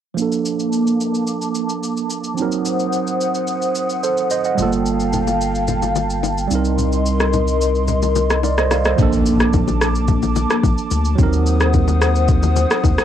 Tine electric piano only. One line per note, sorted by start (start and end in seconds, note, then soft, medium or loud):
0.14 2.32 F3 medium
0.14 2.33 A#3 medium
0.19 2.35 D4 medium
0.19 2.36 A4 medium
2.35 2.43 F3 medium
2.35 4.54 C4 medium
2.40 4.56 F#3 medium
2.40 4.55 D#4 medium
2.40 4.02 A#4 medium
4.03 4.30 A4 medium
4.03 4.29 C5 medium
4.31 4.45 C5 medium
4.31 4.44 D#5 medium
4.45 4.72 D#5 soft
4.45 4.71 F#5 medium
4.55 6.45 G3 medium
4.55 4.64 A3 medium
4.60 6.50 A#3 medium
4.60 6.48 F4 medium
4.60 6.49 A4 medium
6.47 8.65 G3 medium
6.47 8.67 C4 medium
6.53 8.68 D#4 medium
6.53 8.42 A#4 medium
8.44 8.58 A#4 medium
8.44 8.57 D5 medium
8.58 8.71 C5 medium
8.58 8.71 D#5 medium
8.72 8.85 D5 medium
8.72 8.85 F5 medium
8.86 9.12 C5 medium
8.86 9.12 D#5 medium
8.95 11.13 F3 medium
8.95 11.14 A#3 medium
9.00 11.16 D4 medium
9.00 11.17 A4 medium
11.15 13.04 F#3 medium
11.15 13.04 C4 medium
11.20 13.04 D#4 medium
11.20 13.04 A#4 medium